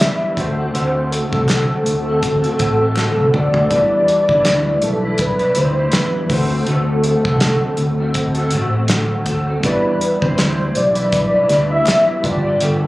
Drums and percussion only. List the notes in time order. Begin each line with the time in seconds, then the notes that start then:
0.00 snare, clap, closed hi-hat
0.37 kick, closed hi-hat
0.75 closed hi-hat
1.12 closed hi-hat
1.33 kick
1.49 snare, clap, closed hi-hat
1.86 closed hi-hat
2.23 kick, closed hi-hat
2.44 closed hi-hat
2.59 kick, closed hi-hat
2.96 snare, clap
3.34 mid tom
3.54 floor tom
3.71 kick, closed hi-hat
4.08 closed hi-hat
4.29 kick
4.45 snare, clap, closed hi-hat
4.82 closed hi-hat
5.18 kick, closed hi-hat
5.39 closed hi-hat
5.55 closed hi-hat
5.92 snare, clap, closed hi-hat
6.30 kick, open hi-hat
6.67 closed hi-hat
7.04 closed hi-hat
7.25 kick
7.40 snare, clap, closed hi-hat
7.77 closed hi-hat
8.14 kick, closed hi-hat
8.35 closed hi-hat
8.51 closed hi-hat
8.88 snare, clap, closed hi-hat
9.26 kick, closed hi-hat
9.63 kick, closed hi-hat
10.01 closed hi-hat
10.22 kick
10.38 snare, clap, closed hi-hat
10.75 closed hi-hat
10.95 closed hi-hat
11.12 kick, closed hi-hat
11.49 snare, closed hi-hat
11.86 snare, clap, closed hi-hat
12.24 kick, closed hi-hat
12.61 closed hi-hat